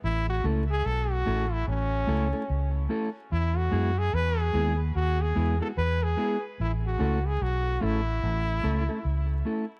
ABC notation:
X:1
M:4/4
L:1/16
Q:"Swing 16ths" 1/4=73
K:Alyd
V:1 name="Trombone"
E F2 G A F2 E C6 z2 | E F2 G B G2 z F G2 A B G2 z | E F2 G F2 E8 z2 |]
V:2 name="Clean electric guitar"
z2 [A,CEA] z3 [A,CEA] z3 [A,CEA] [A,CEA] z2 [A,CEA] z | z2 [G,B,EG] z3 [G,B,EG] z3 [G,B,EG] [G,B,EG] z2 [G,B,EG] z | z2 [A,CEA] z3 [A,CEA] z3 [A,CEA] [A,CEA] z2 [A,CEA] z |]
V:3 name="Fingered electric bass" clef=bass
A,,,2 C,,2 B,,,2 A,,,2 A,,,2 C,, z C,,2 z2 | E,,2 F,,2 E,,2 D,,2 D,,2 E,, z E,,2 z2 | A,,,2 C,,2 B,,,2 A,,,2 A,,,2 C,, z C,,2 z2 |]